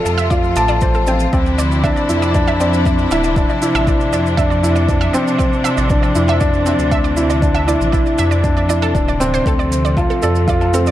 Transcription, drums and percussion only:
0.06 low woodblock, shaker
0.18 shaker
0.31 kick, shaker
0.44 shaker
0.56 shaker
0.68 low woodblock, shaker
0.81 kick, shaker
0.94 shaker
1.07 shaker
1.20 shaker
1.33 kick, shaker
1.46 shaker
1.59 shaker
1.71 shaker
1.84 kick, low woodblock, shaker
1.97 shaker
2.09 shaker
2.22 shaker
2.35 kick, shaker
2.48 low woodblock, shaker
2.60 shaker
2.74 shaker
2.85 kick, shaker
2.98 shaker
3.11 low woodblock, shaker
3.24 shaker
3.36 kick, shaker
3.49 shaker
3.62 shaker
3.75 low woodblock, shaker
3.87 kick, shaker
4.01 shaker
4.13 shaker
4.26 shaker
4.38 kick, low woodblock, shaker
4.51 shaker
4.64 shaker
4.76 shaker
4.89 kick, shaker
5.02 low woodblock, shaker
5.14 shaker
5.28 shaker
5.39 kick, shaker
5.53 shaker
5.65 low woodblock, shaker
5.78 shaker
5.90 kick, shaker
6.03 shaker
6.15 shaker
6.28 low woodblock, shaker
6.41 kick, shaker
6.54 shaker
6.66 shaker
6.79 shaker
6.92 kick, low woodblock, shaker
7.04 shaker
7.17 shaker
7.30 shaker
7.42 kick, shaker
7.55 low woodblock, shaker
7.68 shaker
7.81 shaker
7.93 kick, shaker
8.06 shaker
8.18 low woodblock, shaker
8.32 shaker
8.44 kick, shaker
8.57 shaker
8.70 shaker
8.83 low woodblock, shaker
8.95 kick, shaker
9.09 shaker
9.21 shaker
9.34 shaker
9.46 kick, shaker
9.60 shaker
9.72 shaker
9.85 shaker
9.97 kick, low woodblock, shaker
10.10 shaker
10.22 shaker
10.35 shaker
10.48 kick, shaker
10.61 low woodblock, shaker
10.74 shaker
10.87 shaker

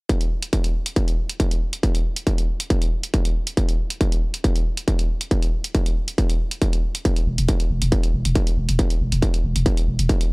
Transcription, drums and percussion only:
0.09 kick, closed hi-hat
0.21 closed hi-hat
0.42 closed hi-hat
0.53 kick, closed hi-hat
0.64 closed hi-hat
0.86 closed hi-hat
0.96 kick, closed hi-hat
1.08 closed hi-hat
1.29 closed hi-hat
1.40 kick, closed hi-hat
1.51 closed hi-hat
1.73 closed hi-hat
1.83 kick, closed hi-hat
1.95 closed hi-hat
2.16 closed hi-hat
2.27 kick, closed hi-hat
2.38 closed hi-hat
2.60 closed hi-hat
2.70 kick, closed hi-hat
2.82 closed hi-hat
3.03 closed hi-hat
3.14 kick, closed hi-hat
3.25 closed hi-hat
3.47 closed hi-hat
3.57 kick, closed hi-hat
3.69 closed hi-hat
3.90 closed hi-hat
4.01 kick, closed hi-hat
4.12 closed hi-hat
4.34 closed hi-hat
4.44 kick, closed hi-hat
4.56 closed hi-hat
4.77 closed hi-hat
4.88 kick, closed hi-hat
4.99 closed hi-hat
5.21 closed hi-hat
5.31 kick, closed hi-hat
5.42 closed hi-hat
5.64 closed hi-hat
5.75 kick, closed hi-hat
5.86 closed hi-hat
6.08 closed hi-hat
6.18 kick, closed hi-hat
6.30 closed hi-hat
6.51 closed hi-hat
6.62 kick, closed hi-hat
6.73 closed hi-hat
6.95 closed hi-hat
7.05 kick, closed hi-hat
7.16 closed hi-hat
7.38 closed hi-hat
7.49 kick, closed hi-hat
7.60 closed hi-hat
7.82 closed hi-hat
7.92 kick, closed hi-hat
8.03 closed hi-hat
8.25 closed hi-hat
8.35 kick, closed hi-hat
8.47 closed hi-hat
8.69 closed hi-hat
8.79 kick, closed hi-hat
8.90 closed hi-hat
9.12 closed hi-hat
9.22 kick, closed hi-hat
9.34 closed hi-hat
9.56 closed hi-hat
9.66 kick, closed hi-hat
9.77 closed hi-hat
9.99 closed hi-hat
10.09 kick, closed hi-hat
10.21 closed hi-hat

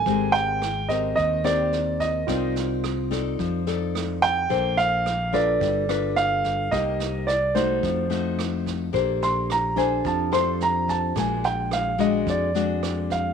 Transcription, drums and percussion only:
0.06 kick, snare
0.34 snare
0.62 cross-stick, snare
0.89 kick, snare
1.17 kick, snare
1.45 cross-stick, snare
1.73 snare
2.00 kick, snare
2.28 kick, cross-stick, snare
2.56 snare
2.84 cross-stick, snare
3.11 kick, snare
3.39 kick, snare
3.67 snare
3.95 cross-stick, snare
4.23 kick, snare
4.50 kick, snare
4.79 snare
5.06 cross-stick, snare
5.34 kick, snare
5.61 kick, snare
5.89 cross-stick, snare
6.17 snare
6.44 kick, snare
6.72 kick, cross-stick, snare
7.00 snare
7.28 cross-stick, snare
7.55 kick, snare
7.83 kick, snare
8.11 snare
8.39 cross-stick, snare
8.66 kick, snare
8.94 kick, snare
9.22 snare
9.50 cross-stick, snare
9.77 kick, snare
10.05 kick, snare
10.33 cross-stick, snare
10.61 snare
10.88 kick, snare
11.16 kick, cross-stick, snare
11.44 snare
11.71 cross-stick, snare
11.99 kick, snare
12.27 kick, snare
12.55 snare
12.83 cross-stick, snare
13.10 kick, snare

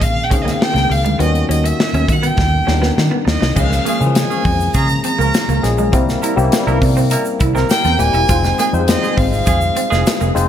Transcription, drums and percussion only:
0.02 kick, closed hi-hat
0.31 kick, closed hi-hat
0.48 snare, closed hi-hat
0.62 snare
0.76 snare, closed hi-hat
0.92 open hi-hat
1.06 closed hi-hat
1.20 closed hi-hat
1.35 closed hi-hat
1.51 closed hi-hat
1.66 closed hi-hat
1.80 snare
1.94 closed hi-hat
2.08 kick, closed hi-hat
2.23 closed hi-hat
2.38 kick, snare
2.68 snare
2.83 snare
2.98 snare
3.28 snare
3.42 snare
3.56 kick, crash, shaker
3.72 snare, shaker
3.86 closed hi-hat, shaker
4.01 shaker
4.15 snare, closed hi-hat, shaker
4.31 shaker
4.45 kick, open hi-hat
4.60 shaker
4.74 kick, closed hi-hat, shaker
4.89 shaker
5.04 closed hi-hat, shaker
5.21 shaker
5.34 snare, closed hi-hat, shaker
5.49 shaker
5.64 snare, closed hi-hat, shaker
5.78 shaker
5.93 kick, closed hi-hat, shaker
6.09 snare, shaker
6.23 closed hi-hat, shaker
6.38 shaker
6.52 snare, closed hi-hat, shaker
6.68 shaker
6.82 kick, open hi-hat
6.97 shaker
7.10 closed hi-hat, shaker
7.25 shaker
7.40 kick, closed hi-hat, shaker
7.56 snare, shaker
7.69 snare, closed hi-hat, shaker
7.84 snare, shaker
8.00 closed hi-hat, shaker
8.14 shaker
8.29 kick, closed hi-hat, shaker
8.44 snare, shaker
8.58 closed hi-hat, shaker
8.74 shaker
8.88 snare, closed hi-hat, shaker
9.03 shaker
9.18 kick, open hi-hat
9.33 shaker
9.46 kick, closed hi-hat, shaker
9.61 shaker
9.76 closed hi-hat, shaker
9.92 snare, shaker
10.06 snare, closed hi-hat, shaker
10.21 shaker
10.36 closed hi-hat, shaker

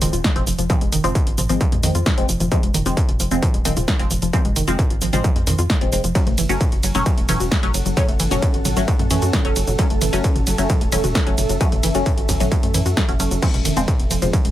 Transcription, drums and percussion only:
0.02 mid tom, open hi-hat, shaker
0.13 closed hi-hat, shaker
0.24 kick, snare, closed hi-hat, shaker
0.36 closed hi-hat, mid tom
0.47 open hi-hat, shaker
0.59 closed hi-hat, shaker
0.70 kick, closed hi-hat, mid tom, shaker
0.81 closed hi-hat
0.92 open hi-hat, shaker
1.04 closed hi-hat, mid tom, shaker
1.15 kick, closed hi-hat, shaker
1.27 closed hi-hat
1.38 mid tom, open hi-hat, shaker
1.49 closed hi-hat, shaker
1.61 kick, closed hi-hat, shaker
1.72 closed hi-hat, mid tom
1.83 open hi-hat, shaker
1.95 closed hi-hat, shaker
2.06 kick, snare, closed hi-hat, mid tom, shaker
2.18 closed hi-hat
2.29 open hi-hat, shaker
2.40 closed hi-hat, mid tom, shaker
2.52 kick, closed hi-hat, shaker
2.63 closed hi-hat
2.74 mid tom, open hi-hat, shaker
2.86 closed hi-hat, shaker
2.97 kick, closed hi-hat, shaker
3.09 closed hi-hat, mid tom
3.20 open hi-hat, shaker
3.31 closed hi-hat, shaker
3.42 kick, closed hi-hat, mid tom, shaker
3.54 closed hi-hat
3.65 open hi-hat, shaker
3.77 closed hi-hat, mid tom, shaker
3.88 kick, snare, closed hi-hat, shaker
3.99 closed hi-hat
4.11 mid tom, open hi-hat, shaker
4.22 closed hi-hat, shaker
4.33 kick, closed hi-hat, shaker
4.45 closed hi-hat, mid tom
4.56 open hi-hat, shaker
4.68 closed hi-hat, shaker
4.79 kick, closed hi-hat, mid tom, shaker
4.90 closed hi-hat
5.02 open hi-hat, shaker
5.13 closed hi-hat, mid tom, shaker
5.24 kick, closed hi-hat, shaker
5.36 closed hi-hat
5.47 mid tom, open hi-hat, shaker
5.59 closed hi-hat, shaker
5.70 kick, snare, closed hi-hat, shaker
5.81 closed hi-hat, mid tom
5.92 open hi-hat, shaker
6.04 closed hi-hat, shaker
6.15 kick, closed hi-hat, ride, shaker
6.27 closed hi-hat, mid tom
6.38 open hi-hat, ride, shaker
6.49 closed hi-hat, shaker
6.61 kick, closed hi-hat, mid tom, ride, shaker
6.72 closed hi-hat
6.83 open hi-hat, ride, shaker
6.95 closed hi-hat, mid tom, shaker
7.06 kick, closed hi-hat, ride, shaker
7.18 closed hi-hat
7.29 mid tom, open hi-hat, ride, shaker
7.40 closed hi-hat, shaker
7.51 kick, snare, closed hi-hat, ride, shaker
7.63 closed hi-hat, mid tom
7.74 open hi-hat, ride, shaker
7.86 closed hi-hat, shaker
7.97 kick, closed hi-hat, mid tom, ride, shaker
8.08 closed hi-hat
8.20 open hi-hat, ride, shaker
8.31 closed hi-hat, mid tom, shaker
8.42 kick, closed hi-hat, ride, shaker
8.54 closed hi-hat
8.65 mid tom, open hi-hat, ride, shaker
8.77 closed hi-hat, shaker
8.88 kick, closed hi-hat, ride, shaker
8.99 closed hi-hat, mid tom
9.11 open hi-hat, ride, shaker
9.22 closed hi-hat, shaker
9.33 kick, snare, closed hi-hat, mid tom, ride, shaker
9.45 closed hi-hat
9.56 open hi-hat, ride, shaker
9.67 closed hi-hat, mid tom, shaker
9.79 kick, closed hi-hat, ride, shaker
9.90 closed hi-hat
10.01 mid tom, open hi-hat, ride, shaker
10.13 closed hi-hat, shaker
10.24 kick, closed hi-hat, ride, shaker
10.36 closed hi-hat, mid tom
10.47 open hi-hat, ride, shaker
10.58 closed hi-hat, shaker
10.70 kick, closed hi-hat, mid tom, ride, shaker
10.81 closed hi-hat
10.92 open hi-hat, ride, shaker
11.04 closed hi-hat, mid tom, shaker
11.15 kick, snare, closed hi-hat, ride, shaker
11.27 closed hi-hat
11.38 mid tom, open hi-hat, ride, shaker
11.49 closed hi-hat, shaker
11.61 kick, closed hi-hat, ride, shaker
11.72 closed hi-hat, mid tom
11.83 open hi-hat, ride, shaker
11.95 closed hi-hat, shaker
12.06 kick, closed hi-hat, mid tom, ride, shaker
12.18 closed hi-hat
12.29 kick, open hi-hat, ride, shaker
12.40 closed hi-hat, mid tom, shaker
12.52 kick, closed hi-hat, ride, shaker
12.63 closed hi-hat
12.74 mid tom, open hi-hat, ride, shaker
12.86 closed hi-hat, shaker
12.97 kick, snare, closed hi-hat, ride, shaker
13.09 closed hi-hat, mid tom
13.20 open hi-hat, ride, shaker
13.31 closed hi-hat, shaker
13.42 kick, closed hi-hat, crash, ride, shaker
13.54 closed hi-hat, mid tom
13.65 open hi-hat, ride, shaker
13.77 closed hi-hat, shaker
13.88 kick, closed hi-hat, mid tom, ride, shaker
13.99 closed hi-hat
14.11 open hi-hat, ride, shaker
14.22 closed hi-hat, mid tom, shaker
14.33 kick, closed hi-hat, ride, shaker
14.45 closed hi-hat

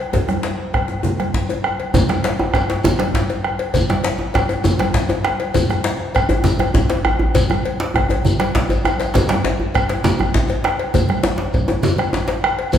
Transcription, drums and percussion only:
0.13 bombo low, cowbell, djembe slap, high conga, djembe bass, low conga
0.28 bombo rim, djembe slap, high conga, djembe tone
0.43 cowbell, djembe slap, high conga
0.58 bombo rim, djembe slap
0.73 bombo rim, bombo low, cowbell, djembe slap
0.88 djembe tone, high conga
1.03 high conga, djembe bass, low conga
1.20 bombo rim, cowbell, high conga
1.34 bombo low, djembe slap
1.49 cowbell, djembe slap, djembe tone
1.64 bombo rim, djembe slap
1.80 cowbell, djembe slap, high conga
1.94 bombo low, cowbell, djembe tone, low conga, djembe bass, shekere
2.09 bombo rim, djembe slap, high conga, djembe tone
2.24 cowbell, djembe slap, high conga
2.39 bombo rim, djembe tone
2.54 bombo rim, bombo low, cowbell, djembe slap, shekere
2.70 cowbell, djembe slap, djembe tone
2.84 djembe tone, djembe bass, low conga, shekere
2.99 bombo rim, cowbell, djembe slap, high conga
3.14 bombo rim, bombo low, djembe slap, shekere
3.30 cowbell, djembe tone
3.44 bombo rim
3.59 cowbell, djembe slap
3.74 bombo low, cowbell, djembe tone, djembe bass, low conga, shekere
3.89 bombo rim, djembe slap, djembe tone, high conga
4.04 cowbell, djembe slap, high conga
4.19 bombo rim, djembe tone
4.34 bombo rim, bombo low, cowbell, djembe slap, shekere
4.49 cowbell, djembe tone
4.64 djembe tone, djembe bass, low conga, shekere
4.79 bombo rim, cowbell, djembe slap, high conga
4.94 bombo rim, bombo low, djembe slap, shekere
5.09 cowbell, djembe tone
5.24 bombo rim, djembe slap, high conga
5.40 cowbell, djembe slap
5.54 bombo low, cowbell, low conga, djembe bass, shekere
5.69 bombo rim, high conga, djembe tone
5.84 cowbell, djembe slap, high conga
6.00 bombo rim
6.15 bombo rim, bombo low, cowbell, shekere
6.29 cowbell, djembe tone, djembe bass
6.44 djembe slap, low conga, djembe bass, shekere
6.59 bombo rim, cowbell, high conga, djembe bass
6.74 bombo rim, bombo low, djembe slap, djembe bass, shekere
6.90 cowbell, djembe slap, djembe tone
7.05 bombo rim, high conga, djembe bass
7.19 djembe bass
7.34 bombo low, cowbell, djembe slap, djembe bass, low conga, shekere
7.49 bombo rim, djembe tone, high conga, djembe bass
7.65 cowbell, high conga
7.80 djembe slap
7.94 bombo rim, bombo low, cowbell, djembe bass
8.09 cowbell, djembe slap, djembe tone, djembe bass
8.25 low conga, djembe bass, shekere
8.40 bombo rim, cowbell, djembe slap, high conga, shekere
8.55 bombo low, djembe slap
8.69 cowbell, djembe bass, shekere
8.85 bombo rim, djembe slap, djembe bass, shekere
9.00 bombo rim, cowbell, djembe slap, high conga, shekere
9.14 bombo low, cowbell, djembe slap, djembe bass, low conga, shekere
9.29 bombo rim, djembe slap, djembe tone, high conga
9.44 cowbell, djembe slap, high conga, djembe bass
9.60 bombo rim, djembe bass
9.74 bombo rim, bombo low, cowbell, shekere
9.89 cowbell, djembe slap, djembe tone
10.04 djembe slap, low conga, djembe bass, shekere
10.19 bombo rim, high conga, djembe bass
10.34 bombo rim, bombo low, djembe slap, djembe bass, shekere
10.48 cowbell, djembe tone
10.64 bombo rim, djembe slap, high conga
10.79 cowbell, djembe slap
10.94 bombo low, cowbell, djembe bass, low conga, shekere
11.09 bombo rim, djembe slap, high conga
11.23 cowbell, djembe slap, djembe tone, high conga
11.38 bombo rim, djembe slap
11.53 bombo low, cowbell, shekere
11.68 cowbell, djembe tone
11.83 djembe slap, low conga, djembe bass, shekere
11.98 bombo rim, cowbell, high conga
12.13 bombo rim, djembe slap, djembe tone, shekere
12.28 cowbell, djembe slap, djembe tone
12.44 bombo rim, high conga
12.59 cowbell, djembe slap
12.73 bombo low, cowbell, djembe bass, low conga, shekere

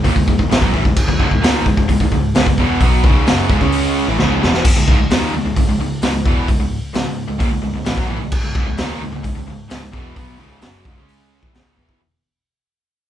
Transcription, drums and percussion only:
0.05 kick, open hi-hat
0.16 kick
0.28 kick
0.39 kick
0.52 snare, open hi-hat
0.62 kick
0.74 kick
0.85 kick
0.96 kick, crash
1.08 kick
1.20 kick
1.31 kick
1.43 snare, open hi-hat
1.66 kick
1.77 kick
1.89 kick, open hi-hat
2.00 kick
2.12 kick
2.35 snare, open hi-hat
2.46 kick, snare
2.58 kick
2.80 kick, open hi-hat
3.04 kick
3.27 snare, open hi-hat
3.50 kick
3.61 kick
3.72 open hi-hat
4.19 snare
4.43 snare
4.54 snare
4.65 kick, crash
4.88 kick
5.11 snare, open hi-hat
5.57 kick, open hi-hat
6.02 snare, open hi-hat
6.16 snare
6.26 kick
6.48 kick, open hi-hat
6.95 snare, open hi-hat
7.40 kick, open hi-hat
7.85 snare, open hi-hat
7.97 kick, snare
8.32 kick, crash
8.55 kick
8.78 snare, open hi-hat
9.24 kick, open hi-hat
9.70 snare, open hi-hat
9.93 kick
10.16 kick, open hi-hat
10.62 snare, open hi-hat
10.85 kick
11.09 open hi-hat
11.43 kick
11.55 snare, open hi-hat
11.77 kick
11.89 kick

